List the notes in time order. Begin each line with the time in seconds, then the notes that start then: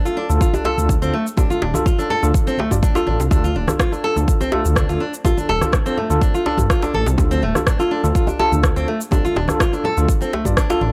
0.05 D4 F4 A4, muted conga, shaker
0.17 D4
0.29 D2 D4 F4 A4, muted conga, shaker
0.41 F4, kick, shaker
0.54 D4, muted conga, djembe tone, shaker
0.65 D4 F4 A4, djembe slap, djembe tone
0.78 D2, muted conga, high conga, shaker
0.89 kick, high conga, shaker
1.02 D2 C4 D4 F4 A4, shaker
1.14 A3, muted conga
1.27 shaker
1.37 D4 F4 A4, kick, muted conga, djembe tone, low conga, shaker
1.50 F4, high conga, shaker
1.62 D1 D4, djembe slap, muted conga
1.74 D4 F4 A4, high conga, djembe tone, shaker
1.86 F4, kick, low conga, shaker
1.99 D4 F4 A4, muted conga, shaker
2.10 A4, low conga
2.22 D2 D4 F4 A4, muted conga, shaker
2.34 kick, shaker
2.47 C4, muted conga, shaker
2.58 A3, djembe slap, high conga
2.71 G2 D4 F4 D5, kick, muted conga, djembe tone, shaker
2.83 D4, kick, shaker
2.95 D4 F4 A4, djembe slap, shaker
3.07 A1 D4, muted conga, high conga
3.20 C2, djembe slap, shaker
3.31 D2 D4 F4 A4, kick, muted conga, djembe tone, low conga, shaker
3.44 F4, high conga, shaker
3.55 D1 D4, muted conga
3.68 D4 F4 A4, cross-stick, high conga, djembe tone, shaker
3.79 F4, kick, cross-stick, low conga, shaker
3.92 D4 F4 A4, muted conga, shaker
4.04 A4
4.16 D2 D4 F4 A4, muted conga, shaker
4.28 kick, shaker
4.40 C4, muted conga, djembe tone, shaker
4.52 A3 D4 F4 A4, djembe slap, djembe tone
4.64 D2, muted conga, high conga, shaker
4.75 D4, kick, cross-stick, high conga, shaker
4.89 D2 D4 F4 A4, shaker
5.00 D4, muted conga
5.14 shaker
5.24 D4 F4 A4, kick, muted conga, djembe tone, low conga, shaker
5.37 D4, high conga, shaker
5.49 D1 A4, muted conga, djembe slap
5.61 D4 F4 A4, cross-stick, high conga, djembe tone, shaker
5.72 kick, cross-stick, low conga, shaker
5.86 C4 D4 F4 A4, muted conga, shaker
5.97 A3, low conga
6.10 D2 D4 F4 A4, muted conga, shaker
6.21 D4, kick, shaker
6.34 F4, muted conga, shaker
6.46 D4 F4 A4, djembe slap
6.58 G2, kick, muted conga, djembe tone, shaker
6.70 F4, kick, cross-stick, shaker
6.82 D4 F4 A4, djembe slap, shaker
6.94 A1 A4, muted conga, high conga
7.06 C2, djembe slap, shaker
7.18 D2 D4 F4 A4, kick, muted conga, djembe tone, low conga, shaker
7.31 C4, high conga, shaker
7.42 D1 A3, muted conga
7.55 D4 F4 A4, cross-stick, djembe tone, high conga, shaker
7.67 D4, kick, cross-stick, low conga, shaker
7.79 D4 F4 A4, muted conga, shaker
7.91 D4
8.03 D2 D4 F4 A4, muted conga, shaker
8.15 F4, kick, shaker
8.27 D4, muted conga, djembe tone, shaker
8.39 D4 F4 A4, djembe slap, djembe tone
8.52 D2, muted conga, high conga, shaker
8.63 kick, cross-stick, high conga, shaker
8.76 D2 C4 D4 F4 A4, shaker
8.88 A3, muted conga
9.01 shaker
9.11 D4 F4 A4, kick, muted conga, djembe tone, low conga, shaker
9.25 F4, high conga, shaker
9.35 D1 D4, muted conga, djembe slap
9.48 D4 F4 A4, cross-stick, high conga, djembe tone, shaker
9.60 F4, kick, cross-stick, low conga, shaker
9.73 D4 F4 A4, muted conga, shaker
9.84 A4, low conga
9.97 D2 D4 F4 A4, muted conga, shaker
10.08 kick, shaker
10.21 C4, muted conga, shaker
10.33 A3, djembe slap
10.45 G2 D4 F4 D5, kick, muted conga, djembe tone, shaker
10.57 D4, kick, cross-stick, shaker
10.70 D4 F4 A4, djembe slap, shaker
10.81 A1 D4, muted conga, high conga